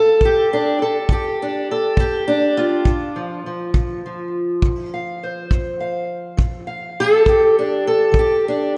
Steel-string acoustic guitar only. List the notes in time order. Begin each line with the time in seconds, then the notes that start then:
Already playing: A4 F5
0.21 D3 G4
0.53 D4
0.82 A4
1.10 D3 G4
1.42 D4
1.71 A4
1.97 D3 G4
2.28 D4
2.57 F4
2.85 D3
3.16 F3
3.46 F3
3.74 D3
4.06 F3
4.65 D3
4.94 F5
5.23 C5
5.52 D3
5.80 F5
6.37 D3
6.67 F5
7.00 A4
7.25 D3 G4
7.59 D4
7.87 A4
8.11 D3
8.19 G4
8.48 D4